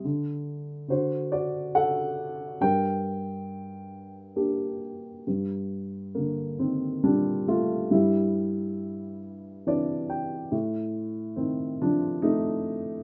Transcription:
<<
  \new Staff \with { instrumentName = "Upright piano" } { \time 3/4 \key g \minor \tempo 4 = 69 r4 <fis' c''>8 <fis' d''>8 <a' fis''>4 | <bes' g''>2~ <bes' g''>8 r8 | r4 <d bes>8 <ees c'>8 <g d'>8 <a f'>8 | <g e'>4. r8 d''8 g''8 |
r4 <ees c'>8 <f d'>8 <a ees'>4 | }
  \new Staff \with { instrumentName = "Upright piano" } { \clef bass \time 3/4 \key g \minor d4 d2 | g,2 <bes d' g'>4 | g,2 bes,4 | g,2 <e c' d'>4 |
a,2 c'4 | }
>>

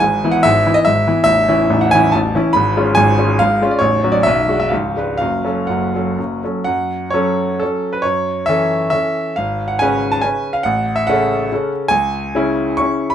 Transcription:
<<
  \new Staff \with { instrumentName = "Grand piano" } { \time 3/4 \key e \major \tempo 4 = 138 gis''8. fis''16 e''8. dis''16 e''4 | \key fis \minor e''4~ e''16 fis''16 gis''8 a''4 | b''4 gis''4 eis''8. d''16 | cis''8. d''16 e''8. e''16 eis''4 |
eis''4 fis''4. r8 | fis''4 cis''4 a'8. b'16 | cis''4 e''4 e''4 | eis''8. fis''16 gis''8. a''16 gis''8. eis''16 |
fis''8. e''16 fis''4. r8 | \key cis \minor gis''2 cis'''8. b''16 | }
  \new Staff \with { instrumentName = "Grand piano" } { \clef bass \time 3/4 \key e \major <gis,, gis,>8 <e b e'>8 <gis,, gis,>8 <e b e'>8 <gis,, gis,>8 <e b e'>8 | \key fis \minor <a,,, a,,>8 <e cis' e'>8 <a,,, a,,>8 <e cis' e'>8 <a,,, a,,>8 <e cis' e'>8 | <gis,, gis,>8 <gis cis' eis'>8 <gis,, gis,>8 <gis cis' eis'>8 <gis,, gis,>8 <gis cis' eis'>8 | <a,,, a,,>8 <fis cis' fis'>8 <b,,, b,,>8 <gis d' fis'>8 <cis,, cis,>8 <gis d' b'>8 |
<fis,, fis,>8 <fis cis' a'>8 <fis,, fis,>8 <fis cis' a'>8 <fis,, fis,>8 <fis cis' a'>8 | fis,4 <fis cis' a'>4 <fis cis'>4 | fis,4 <e cis' a'>4 <e cis' a'>4 | gis,,4 <cis cis' b'>4 <cis cis' b'>4 |
a,,4 <cis cis' a'>4 <cis cis' a'>4 | \key cis \minor cis,4 <cis cis' e'>4 <cis cis' e'>4 | }
>>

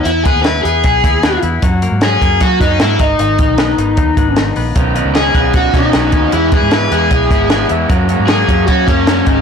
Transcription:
<<
  \new Staff \with { instrumentName = "Lead electric guitar" } { \time 4/4 \key fis \mixolydian \tempo 4 = 153 e'8 gis'8 b'8 gis'2 r8 | r4 gis'4 fis'8 dis'8 e'8 dis'8~ | dis'2. r4 | r4 gis'4 fis'8 dis'4. |
e'8 gis'8 b'8 gis'2 r8 | r4 gis'4 fis'8 cis'4. | }
  \new Staff \with { instrumentName = "Clean electric guitar" } { \time 4/4 \key fis \mixolydian r8 b8 e'8 b8 gis'8 e'8 b8 e'8 | fis8 ais8 cis'8 ais8 fis'8 b16 cis'16 ais8 dis8 | dis8 dis8 b8 dis8 dis'8 b8 dis8 b8 | dis8 b8 cis'8 b8 fis'8 cis'8 b8 cis'8 |
e8 b8 e'8 b8 gis'8 e'8 b8 e'8 | fis8 fis8 ais8 fis8 cis'8 ais8 fis8 dis8 | }
  \new Staff \with { instrumentName = "Overdriven electric guitar" } { \time 4/4 \key fis \mixolydian r1 | r1 | r1 | <b, dis fis cis' dis'>8 <fis cis' dis'>8 <b, dis fis cis' dis'>8 <fis cis' dis'>8 <dis fis cis' dis'>8 <fis cis' dis'>8 <b, dis fis cis' dis'>8 <fis cis' dis'>8 |
<e gis b e'>8 <gis b e'>8 <e gis b e'>8 <gis b e'>8 <e gis b e'>8 <gis b e'>8 <e gis b e'>8 <gis b e'>8 | <fis, cis fis ais cis'>8 <fis ais cis'>8 <fis, cis fis ais cis'>8 <fis ais cis'>8 <cis fis ais cis'>8 <fis ais cis'>8 <fis, cis fis ais cis'>8 <gis b dis'>8 | }
  \new Staff \with { instrumentName = "Fingered electric bass" } { \clef bass \time 4/4 \key fis \mixolydian e,8. dis,8. e,8 b,,8 dis,4 e,8 | fis,8. gis,8. fis,8 fis8 fis,8 gis,8 gis,,8 | gis,,8. b,,8. gis,,8 dis,8 gis,,4 ais,,8 | b,,8. cis,8. b,,4 b,8 b,,8 dis,8 |
e,8. gis,8. e,8 b,,8 gis,,4 e,8 | fis,8. gis,8. fis,8 fis8 fis,4 gis,,8 | }
  \new DrumStaff \with { instrumentName = "Drums" } \drummode { \time 4/4 hh8 <hh bd>8 <hh sn>8 hh8 <hh bd>8 <hh bd>8 <hh sn>8 hh8 | <hh bd>8 hh8 <hh sn>8 <hh bd>8 <hh bd>8 <hh bd>8 <hh sn>8 <hh bd>8 | hh8 <hh bd>8 <hh sn>8 hh8 <hh bd>8 <hh bd>8 <hh sn>8 hho8 | <hh bd>8 hh8 <hh sn>8 <hh bd>8 <hh bd>8 <hh bd>8 <hh sn>8 <hh bd>8 |
hh8 <hh bd>8 <hh sn>8 hh8 <hh bd>8 <hh bd>8 <hh sn>8 hh8 | <hh bd>8 hh8 <hh sn>8 <hh bd>8 <hh bd>8 <hh bd>8 <hh sn>8 <hh bd>8 | }
>>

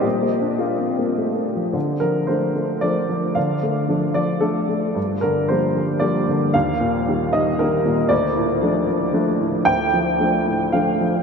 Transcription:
<<
  \new Staff \with { instrumentName = "Upright piano" } { \time 3/4 \key d \phrygian \tempo 4 = 113 g'4 f'4. r8 | r8 bes'8 c''4 d''4 | f''4. d''8 a'4 | r8 bes'8 c''4 d''4 |
f''4. ees''8 bes'4 | d''2. | g''2 f''4 | }
  \new Staff \with { instrumentName = "Upright piano" } { \clef bass \time 3/4 \key d \phrygian \tuplet 3/2 { bes,8 bes8 d'8 bes8 c'8 bes8 a8 bes8 f8 } | d8 f8 <f a d'>8 a8 <f a d'>8 f8 | d8 a8 <f a d'>8 f8 <f a d'>8 a8 | g,8 d8 <f g bes>8 f8 <f g bes>8 d8 |
ees,8 bes,8 <ees g bes>8 ees8 <ees g bes>8 bes,8 | d,8 a,8 <f a d'>8 f8 <f a d'>8 a,8 | d,8 f8 <f a d'>8 a,8 <f a d'>8 f8 | }
>>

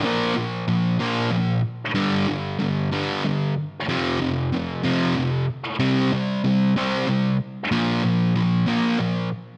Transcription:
\new Staff \with { instrumentName = "Distorted electric guitar" } { \clef bass \time 6/8 \key bes \lydian \tempo 4. = 63 <bes, f bes>8 <bes, f>8 <bes, f>8 <bes, f bes>8 <bes, f>8 r8 | <g, d g>8 <g, d>8 <g, d>8 <g, d g>8 <g, d>8 r8 | <f, c f>8 <f, c>8 <f, c>8 <f, c f>8 <f, c>8 r8 | <c g c'>8 <c g>8 <c g>8 <c g c'>8 <c g>8 r8 |
<bes, f bes>8 <bes, f>8 <bes, f>8 <bes, f bes>8 <bes, f>8 r8 | }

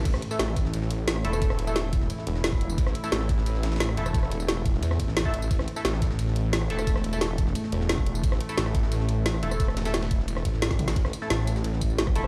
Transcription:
<<
  \new Staff \with { instrumentName = "Synth stab" } { \time 4/4 \key c \mixolydian \tempo 4 = 176 r8. <a e' a'>16 r2 r8 <a e' a'>8~ | <a e' a'>8. <a e' a'>16 r2. | r8. <a e' a'>16 r2 r8 <a e' a'>8~ | <a e' a'>8. r2 r8 <a e' a'>16 r8 |
r8. <a e' a'>16 r2 r8 <a e' a'>8~ | <a e' a'>8. <a e' a'>16 r2. | r8. <a e' a'>16 r2 r8 <a e' a'>8~ | <a e' a'>8. <a e' a'>16 r2. |
r8. <a e' a'>16 r2 r8 <a e' a'>8 | }
  \new Staff \with { instrumentName = "Analog synth pad" } { \clef bass \time 4/4 \key c \mixolydian << { e'1~ | e'1~ | e'1~ | e'1 |
a1~ | a1~ | a1~ | a1 |
e'1 | } \\ { <a, e>1~ | <a, e>1~ | <a, e>1~ | <a, e>1~ |
<a, e>1~ | <a, e>1~ | <a, e>1~ | <a, e>1 |
<a, e>1 | } >> }
  \new Staff \with { instrumentName = "Detuned saw bass" } { \clef bass \time 4/4 \key c \mixolydian a,,8 r8 a,,4 a,,4. e,,8~ | e,,2 r8 e,,4. | a,,8 r8 a,,4 a,,4. e,,8~ | e,,2 e,8 a,,8 a,,8 a,,8 |
a,,8 r8 a,,4 a,,4. e,,8~ | e,,2 r8 e,,4. | a,,8 r8 a,,4 a,,4. e,,8~ | e,,2 e,,8 a,,4. |
a,,8 r8 a,,4 a,,4. e,,8 | }
  \new DrumStaff \with { instrumentName = "Drums" } \drummode { \time 4/4 <cymc hh bd cymr tamb>16 <ss sn>16 <hh cymr>16 <sn tamb>16 <hh cymr sn tamb>16 <ss sn>16 <hh bd cymr sn tamb>16 sn16 <hh cymr tamb>16 sn16 <hh cymr>8 <hh cymr sn tamb>16 ss16 <hh cymr>16 <ss tamb>16 | <hh bd cymr tamb>16 <ss sn>16 <hh cymr>16 tamb16 <hh cymr sn tamb>8 <hh bd cymr tamb>16 sn16 <hh cymr tamb>16 sn16 <hh cymr>16 sn16 <hh hho sn tamb>16 bd16 hh16 tamb16 | <hh bd cymr tamb>16 <ss sn>16 <hh cymr>16 <sn tamb>16 <hh cymr sn tamb>16 <ss sn>16 <hh bd cymr sn tamb>16 sn16 <hh cymr tamb>16 sn16 <hh cymr sn>16 <cymr sn>32 <cymr sn>32 <hh cymr sn tamb>16 ss16 <hh cymr>16 <ss tamb>16 | <hh bd cymr tamb>16 <ss sn>16 <hh cymr tamb>16 tamb16 <hh cymr sn tamb>16 ss16 <hh bd cymr tamb>16 sn16 <hh cymr tamb>16 <ss sn>16 <hh bd cymr tamb>16 sn16 <hh hho sn tamb>16 bd16 <hh cymr>16 tamb16 |
<hh bd cymr tamb>16 <ss sn>16 <hh cymr>16 <sn tamb>16 <hh cymr sn tamb>16 <ss sn>16 <hh bd cymr sn tamb>16 sn16 <hh cymr tamb>16 sn16 <hh cymr>8 <hh cymr sn tamb>16 ss16 <hh cymr>16 <ss tamb>16 | <hh bd cymr tamb>16 <ss sn>16 <hh cymr>16 tamb16 <hh cymr sn tamb>8 <hh bd cymr tamb>16 sn16 <hh cymr tamb>16 sn16 <hh cymr>16 sn16 <hh hho sn tamb>16 bd16 hh16 tamb16 | <hh bd cymr tamb>16 <ss sn>16 <hh cymr>16 <sn tamb>16 <hh cymr sn tamb>16 <ss sn>16 <hh bd cymr sn tamb>16 sn16 <hh cymr tamb>16 sn16 <hh cymr>8 <hh cymr sn tamb>16 ss16 <hh cymr>16 <ss tamb>16 | <hh bd cymr tamb>16 <ss sn>16 <hh cymr sn tamb>16 <cymr sn tamb>16 <hh cymr sn tamb>16 <cymr ss sn>16 <hh bd cymr tamb>16 sn16 <hh cymr tamb>16 <ss sn>16 <hh bd cymr tamb>16 sn16 <hh cymr sn tamb>16 <bd sn>16 <hh cymr tamb toml>16 <hho sn tamb>16 |
<hh bd cymr>16 <ss sn>16 <hh cymr tamb>16 sn16 <hh cymr sn>16 <ss sn>16 <hh cymr sn tamb>16 <sn tamb>16 <hh cymr>16 sn16 <hh bd cymr tamb>16 tamb16 <hh cymr sn>16 <bd ss>16 <hh cymr tamb>16 ss16 | }
>>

